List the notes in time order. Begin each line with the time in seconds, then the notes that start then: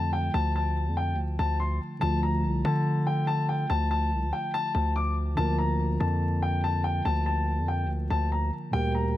Already playing: F2 D3 F3 A3 F4
0.13 G5
0.34 D2 A5
0.56 A5
0.87 F2
0.97 G5
1.13 D2
1.39 D2 A5
1.60 C6
2.00 D2 D3 F3 A3 F4 A5
2.44 C2
2.65 D3 A5
3.07 G5
3.27 A5
3.49 G5
3.70 D2 A5
3.91 A5
4.12 C2
4.23 D2
4.33 G5
4.54 A5
4.75 D2 A5
4.96 D6
5.35 D2 D3 F3 A#3 F4 A5
5.40 A#4
5.58 A#5
6.00 F2 A5
6.42 G5
6.64 A5
6.84 G5
7.05 D2 A5
7.26 A5
7.58 F2
7.68 G5
7.84 D2
8.10 D2 A5
8.32 A#5
8.71 D2 A#2 G3 A#3 G4 G5
8.76 A#4
8.95 A#5